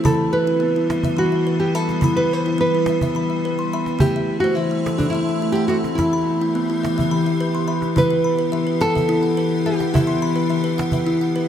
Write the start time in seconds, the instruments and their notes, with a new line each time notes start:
0.04 ambient pad E3 G3 B3, kalimba E3 E4 B5, nylon-string guitar A4, cajon bass
0.20 cajon slap
0.33 nylon-string guitar B4, cajon slap
0.47 kalimba E4 G5
0.60 kalimba B3
0.76 kalimba E4
0.90 kalimba E5, cajon slap
1.03 kalimba E5, cajon bass
1.17 kalimba E3 B5, nylon-string guitar F#4
1.32 kalimba E5, cajon slap
1.47 kalimba B4
1.60 nylon-string guitar G4
1.75 nylon-string guitar A4, kalimba E5 B5
1.89 cajon slap
2.01 kalimba E3 E4 B5, cajon bass
2.16 nylon-string guitar B4, kalimba B5, cajon slap
2.30 nylon-string guitar C5, cajon slap
2.46 kalimba E4 G5
2.58 kalimba B3, nylon-string guitar B4
2.75 kalimba E4
2.86 kalimba E5, cajon slap
3.01 kalimba E5, cajon bass
3.15 kalimba E3 B5
3.29 kalimba E5, cajon slap
3.45 kalimba B4
3.57 kalimba C6, cajon slap
3.73 kalimba E5 B5
3.86 cajon slap
3.99 kalimba A3 E5, ambient pad A3 C4 E4, nylon-string guitar G4, cajon bass
4.14 kalimba E5, cajon slap
4.30 cajon slap
4.40 kalimba A3, nylon-string guitar F#4
4.44 kalimba C5
4.55 kalimba E3, nylon-string guitar E4
4.71 kalimba A3
4.86 kalimba A4, cajon slap
4.98 nylon-string guitar D4, kalimba A4, cajon bass
5.10 kalimba A3, nylon-string guitar E4
5.15 kalimba E5
5.29 kalimba A4, cajon slap
5.42 kalimba E4
5.52 nylon-string guitar G4, kalimba F#5
5.57 cajon slap
5.68 nylon-string guitar F#4, kalimba A4 E5
5.84 cajon slap
5.95 ambient pad E3 B3 G4, kalimba E3 E4 B5, nylon-string guitar E4, cajon bass, cajon slap
6.13 kalimba B5
6.28 cajon slap
6.41 kalimba E4 G5
6.55 kalimba B3, cajon slap
6.70 kalimba E4
6.84 kalimba E5, cajon slap
6.98 kalimba E5, cajon bass
7.11 kalimba E3 B5, cajon slap
7.26 kalimba E5
7.41 kalimba B4
7.54 kalimba C6, cajon slap
7.68 kalimba E5 B5
7.82 cajon slap
7.95 ambient pad E3 B3 G4, kalimba E3 E4, nylon-string guitar B4, cajon bass
8.11 kalimba G5, cajon slap
8.24 kalimba B5
8.39 kalimba B4
8.52 kalimba E3 E5
8.67 kalimba B4
8.81 nylon-string guitar A4, kalimba F#5, cajon slap
8.95 kalimba B4 E5, cajon bass
9.09 kalimba E4
9.23 kalimba F#5
9.37 kalimba B4
9.66 nylon-string guitar G4, kalimba E5 G5
9.80 kalimba F#5, cajon slap
9.94 kalimba E3 E4, nylon-string guitar E4, cajon bass
10.07 kalimba C6
10.22 kalimba B5
10.36 kalimba B4
10.50 kalimba E3 E5
10.64 kalimba B4
10.78 kalimba F#5, cajon slap
10.92 kalimba B4 E5, cajon bass
11.07 kalimba E4
11.21 kalimba F#5
11.36 kalimba B4